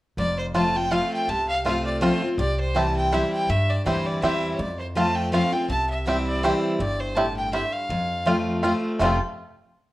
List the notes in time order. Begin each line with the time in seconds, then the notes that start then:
0.17 F1 F2 D5
0.39 C5
0.54 F3 A3 C4 F4 A5
0.75 C4 F4 G5
0.91 F3 A3 C4 F4 F5
1.13 G5
1.28 C2 C3 A5
1.49 F5
1.65 F3 A3 C4 F4 F5
1.85 D5
2.01 F3 A3 C4 F4 C5
2.22 C4 F4
2.38 C2 C3 D5
2.60 C5
2.75 E3 G3 C4 E4 G4 A5
2.97 G5
3.12 E3 G3 C4 E4 G4 E5
3.33 G5
3.49 G2 E5
3.70 D5
3.86 D2 E3 G3 C4 E4 G4 C5
4.06 D5
4.22 E2 E3 G3 C4 E4 G4 E5
4.55 F2 C#5
4.59 F2 D5
4.79 C5
4.96 F3 A3 C4 F4 A5
5.16 G5
5.32 F3 A3 C4 F4 F5
5.52 C4 F4 G5
5.69 C2 C3 A5
5.90 E5
6.06 E3 G3 C4 E4 G4 E5
6.28 D5
6.43 E3 G3 C4 E4 G4 C5
6.80 G1 G2 D5
7.00 C5
7.16 A2 C4 E4 G4 A5
7.36 G5
7.53 G2 C4 E4 G4 E5
7.73 F5
7.89 F2
8.25 F3 A3 C4 F4
8.63 F3 A3 C4 F4
8.99 F1 F2 C3 F3 A3 C4 F4
9.03 F4 A4